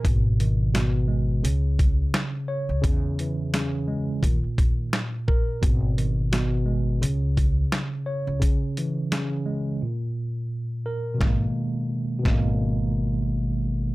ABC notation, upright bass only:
X:1
M:4/4
L:1/16
Q:"Swing 16ths" 1/4=86
K:G#m
V:1 name="Upright bass" clef=bass
G,,,8 C,,4 z3 C,, | E,,8 D,, z D,,2 z4 | G,,,8 C,,4 z3 C,, | z16 |
G,,, z4 z G,,,8- G,,,2 |]